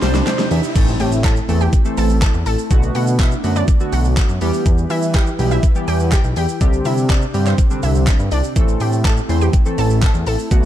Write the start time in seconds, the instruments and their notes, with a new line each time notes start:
Already playing: analog synth pad C3 C4 D4 G4, riser
0.02 analog synth bass C2, synth keys G3 D4 C5 A5, snare, open hi-hat, shaker
0.14 snare, shaker
0.27 synth keys G5, snare, clap, closed hi-hat, shaker
0.39 snare, shaker
0.51 analog synth bass E2, synth keys E5, open hi-hat, shaker
0.63 shaker
0.75 analog synth bass A1, synth keys E3 A3 C4 A4, analog synth pad A3 C4 E4, kick, closed hi-hat, crash, impact, shaker
0.88 shaker
1.00 analog synth bass A2, synth pluck G4 G5, open hi-hat, shaker
1.12 shaker
1.24 synth pluck A4 A5, kick, clap, closed hi-hat, shaker
1.37 shaker
1.49 analog synth bass E2, synth keys E3 A3 C4 A4, open hi-hat, shaker
1.61 synth pluck G4 G5, shaker
1.73 kick, closed hi-hat, shaker
1.85 synth keys E3 A3 C4 A4, shaker
1.97 analog synth bass A1, synth pluck A4 A5, open hi-hat, shaker
2.10 shaker
2.22 synth pluck A4 A5, kick, clap, closed hi-hat, shaker
2.34 analog synth bass E2, shaker
2.46 analog synth bass A1, synth pluck A4 A5, open hi-hat, shaker
2.59 shaker
2.70 analog synth bass B1, synth keys D3 A3 B3 F#4, analog synth pad B3 D4, kick, closed hi-hat, shaker
2.83 shaker
2.95 analog synth bass B2, synth pluck F#4 F#5, open hi-hat, shaker
3.07 shaker
3.19 synth pluck E4 E5, kick, clap, closed hi-hat, shaker
3.32 shaker
3.44 analog synth bass F#2, synth keys D3 A3 B3 F#4, open hi-hat, shaker
3.56 synth pluck D4 D5, shaker
3.68 kick, closed hi-hat, shaker
3.80 synth keys D3 A3 B3 F#4, shaker
3.93 analog synth bass B1, synth pluck F#4 F#5, open hi-hat, shaker
4.05 shaker
4.17 kick, clap, closed hi-hat, shaker
4.29 analog synth bass F#2, shaker
4.41 analog synth bass E2, synth keys E3 G3 B3 G4, analog synth pad E3 E4 G4 B4, open hi-hat, shaker
4.54 shaker
4.66 analog synth bass E2, kick, closed hi-hat, shaker
4.78 shaker
4.90 analog synth bass E3, synth pluck E4 E5, open hi-hat, shaker
5.02 shaker
5.14 synth pluck G4 G5, kick, clap, closed hi-hat, shaker
5.27 shaker
5.39 analog synth bass B1, synth keys E3 G3 B3 G4, open hi-hat, shaker
5.51 synth pluck E4 E5, shaker
5.63 kick, closed hi-hat, shaker
5.75 synth keys E3 G3 B3 G4, shaker
5.88 analog synth bass E2, synth pluck G4 G5, open hi-hat, shaker
6.00 shaker
6.12 synth pluck G4 G5, kick, clap, closed hi-hat, shaker
6.24 analog synth bass B1, shaker
6.36 analog synth bass E2, synth pluck G4 G5, open hi-hat, shaker
6.49 shaker
6.61 analog synth bass C2, analog synth pad C3 C4 D4, synth keys D3 G3 C4 G4, kick, closed hi-hat, shaker
6.73 shaker
6.85 analog synth bass C3, synth pluck E4 E5, open hi-hat, shaker
6.97 shaker
7.09 synth pluck D4 D5, kick, clap, closed hi-hat, shaker
7.22 shaker
7.34 analog synth bass G2, synth keys D3 G3 C4 G4, open hi-hat, shaker
7.46 synth pluck C4 C5, clap, shaker
7.58 kick, closed hi-hat, shaker
7.70 synth keys D3 G3 C4 D4, shaker
7.83 analog synth bass C2, synth pluck E4 E5, open hi-hat, shaker
7.95 shaker
8.07 kick, clap, closed hi-hat, shaker
8.19 analog synth bass G2, shaker
8.31 analog synth bass C2, synth pluck D4 D5, open hi-hat, shaker
8.44 shaker
8.56 analog synth bass A1, synth keys E3 A3 C4 A4, analog synth pad A3 E4, kick, closed hi-hat, shaker
8.68 shaker
8.80 analog synth bass A2, synth pluck G4 G5, open hi-hat, shaker
8.93 shaker
9.05 synth pluck A4 A5, kick, clap, closed hi-hat, shaker
9.17 shaker
9.29 analog synth bass E2, synth keys E3 A3 C4 C5, open hi-hat, shaker
9.41 synth pluck G4 G5, shaker
9.53 kick, closed hi-hat, shaker
9.66 synth keys E3 A3 C4 A4, shaker
9.78 analog synth bass A1, synth pluck A4 A5, open hi-hat, shaker
9.90 shaker
10.02 synth pluck A4 A5, kick, clap, closed hi-hat, shaker
10.14 analog synth bass E2, shaker
10.27 analog synth bass A1, synth pluck A4 A5, open hi-hat, shaker
10.39 shaker
10.51 analog synth bass B1, synth keys D3 A3 B3 F#4, analog synth pad B3 D4, kick, closed hi-hat, shaker